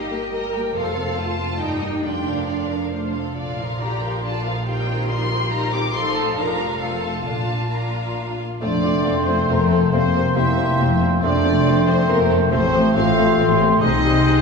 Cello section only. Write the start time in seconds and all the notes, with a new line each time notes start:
Already playing: G4
0.34 A#4
0.76 A4
1.18 F4
1.60 D#4
2.04 D4
3.81 G4
4.25 F4
5.93 A4
6.36 A#4
6.79 A4
7.24 F4
8.62 F2
9.06 F2
9.50 F2
9.93 F2
10.36 F2
10.80 F2
11.23 F2
11.65 F2
12.09 F2
12.52 A2
12.96 A2
13.40 A2
13.82 C3